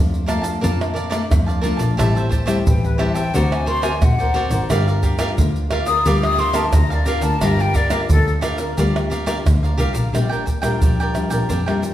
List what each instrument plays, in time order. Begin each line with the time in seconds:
Already playing: double bass F2, nylon-string guitar F3 A3 D4 F4
0.14 pandeiro, shaker
0.26 nylon-string guitar A3 D4 F4, cavaquinho A#4 D5 F5 A5, pandeiro, tamborim, shaker
0.42 cavaquinho D5 F5 A5, pandeiro, shaker
0.61 double bass F2, nylon-string guitar A#2 D4 F4, cavaquinho A#4 D5 F5 A5, pandeiro, shaker, surdo
0.81 pandeiro, tamborim, shaker
0.94 cavaquinho A#4 D5 F5 A5, pandeiro
1.10 nylon-string guitar A3 D4 F4, cavaquinho A#4 D5 F5 A5, pandeiro, tamborim, shaker
1.31 double bass F2, nylon-string guitar F3, pandeiro, tamborim, shaker, surdo
1.46 cavaquinho D5 F5 A5, pandeiro, shaker
1.61 nylon-string guitar A3 D4 F4, cavaquinho A#4 D5 F5 A5, pandeiro, shaker
1.77 double bass A#1, cavaquinho D5 F5 A5, pandeiro, shaker
1.97 double bass A1, nylon-string guitar A2 G3 C4 E4, cavaquinho G4 C5 E5 A5, pandeiro, tamborim, shaker, surdo
2.15 cavaquinho C5 E5 A5, pandeiro, shaker
2.29 cavaquinho G4 C5 E5 A5, pandeiro, shaker, surdo
2.46 nylon-string guitar G3 C4 E4, cavaquinho G4 C5 E5 A5, pandeiro, tamborim, shaker
2.67 double bass A1, nylon-string guitar E3, flute G5, pandeiro, shaker, surdo
2.84 flute B4, pandeiro, shaker
2.98 nylon-string guitar G3 C4 E4, cavaquinho G4 C5 E5 A5, flute E5, pandeiro, tamborim
3.14 cavaquinho C5 E5 A5, flute G5, pandeiro, shaker
3.34 double bass D2, nylon-string guitar D3 C4 F#4 A#4, cavaquinho F#4 A#4 C5 D5, flute F#5, pandeiro, shaker, surdo
3.52 flute G#5, pandeiro, tamborim, shaker
3.66 cavaquinho F#4 A#4 C5 D5, flute C6, pandeiro
3.82 nylon-string guitar C4 F#4 A#4, cavaquinho F#4 A#4 C5 D5, flute G#5, pandeiro, tamborim, shaker
4.02 double bass A#1, nylon-string guitar D3, flute F#5, pandeiro, tamborim, shaker, surdo
4.19 cavaquinho A#4 C5 D5, pandeiro, shaker
4.34 nylon-string guitar C4 F#4 A#4, cavaquinho F#4 A#4 C5 D5, pandeiro
4.51 double bass G#1, cavaquinho A#4 C5 D5, pandeiro, shaker
4.70 double bass G1, nylon-string guitar G3 D4 F4 A#4, cavaquinho G4 A#4 D5 F5, pandeiro, tamborim, shaker, surdo
4.88 cavaquinho A#4 D5 F5, pandeiro, shaker
5.03 cavaquinho G4 A#4 D5 F5, pandeiro, shaker, surdo
5.19 nylon-string guitar D4 F4 A#4, cavaquinho G4 A#4 D5 F5, pandeiro, tamborim, shaker
5.38 double bass D2, nylon-string guitar D3, pandeiro, shaker, surdo
5.56 pandeiro, shaker
5.71 nylon-string guitar D4 F4 A#4, cavaquinho G4 A#4 D5 F5, pandeiro, tamborim
5.86 cavaquinho A#4 D5 F5, flute D#6, pandeiro, shaker
6.05 double bass D2, nylon-string guitar G3 D4 F4 A#4, cavaquinho G4 A#4 D5 F5, flute D6, pandeiro, shaker, surdo
6.23 flute D#6, pandeiro, tamborim, shaker
6.38 cavaquinho G4 A#4 D5 F5, flute C6, pandeiro
6.53 nylon-string guitar D4 F4 A#4, cavaquinho G4 A#4 D5 F5, flute A5, pandeiro, tamborim, shaker
6.73 double bass D2, nylon-string guitar D3, flute A#5, pandeiro, tamborim, shaker, surdo
6.90 cavaquinho A#4 D5 F5, flute D5, pandeiro, shaker
7.06 nylon-string guitar D4 F4 A#4, cavaquinho G4 A#4 D5 F5, flute F5, pandeiro, shaker
7.21 double bass D2, cavaquinho A#4 D5 F5, flute A5, pandeiro, shaker
7.41 double bass G1, nylon-string guitar G3 D4 F4 A#4, cavaquinho G4 A#4 D5 F5, flute A#5, pandeiro, tamborim, shaker, surdo
7.59 cavaquinho A#4 D5 F5, flute G5, pandeiro, shaker
7.74 cavaquinho G4 A#4 D5 F5, flute D5, pandeiro, shaker, surdo
7.90 nylon-string guitar D4 F4 A#4, cavaquinho G4 A#4 D5 F5, flute A#4, pandeiro, tamborim, shaker
8.10 double bass D2, nylon-string guitar D3, flute A4, pandeiro, shaker, surdo
8.28 pandeiro, shaker
8.41 nylon-string guitar D4 F4 A#4, cavaquinho G4 A#4 D5 F5, pandeiro, tamborim, shaker
8.58 cavaquinho A#4 D5 F5, pandeiro, shaker
8.77 double bass D2, nylon-string guitar G3 D4 F4 A#4, cavaquinho G4 A#4 D5 F5, pandeiro, shaker, surdo
8.96 pandeiro, tamborim, shaker
9.10 cavaquinho G4 A#4 D5 F5, pandeiro, shaker
9.26 nylon-string guitar D4 F4 A#4, cavaquinho G4 A#4 D5 F5, pandeiro, tamborim, shaker
9.46 double bass D2, nylon-string guitar D3, pandeiro, tamborim, shaker, surdo
9.63 cavaquinho A#4 D5 F5, pandeiro, shaker
9.77 double bass C2, nylon-string guitar D4 F4 A#4, cavaquinho G4 A#4 D5 F5, pandeiro, shaker
9.93 double bass A#1, cavaquinho A#4 D5 F5, pandeiro, shaker
10.13 double bass A#1, nylon-string guitar A#2 G3 D4 F4, cavaquinho D4 A#4 D5 G5, pandeiro, tamborim, shaker, surdo
10.29 cavaquinho A#4 D5 G5, pandeiro, shaker
10.46 muted cavaquinho stroke, pandeiro, shaker, surdo
10.62 double bass A#1, nylon-string guitar G3 D4 F4, cavaquinho A#4 D5 G5, pandeiro, tamborim, shaker
10.81 double bass A#2, nylon-string guitar F3, cavaquinho D4 A#4 D5 G5, pandeiro, shaker, surdo
11.00 cavaquinho A#4 D5 G5, pandeiro, shaker
11.15 nylon-string guitar G3 D4 F4, pandeiro, tamborim, shaker
11.30 double bass A#1, cavaquinho A#4 D5 G5, pandeiro, shaker
11.49 double bass F2, nylon-string guitar A#2, cavaquinho D4 A#4 D5 G5, pandeiro, shaker, surdo
11.66 nylon-string guitar G3 D4 F4, cavaquinho A#4 D5 G5, pandeiro, tamborim, shaker
11.82 muted cavaquinho stroke, pandeiro, shaker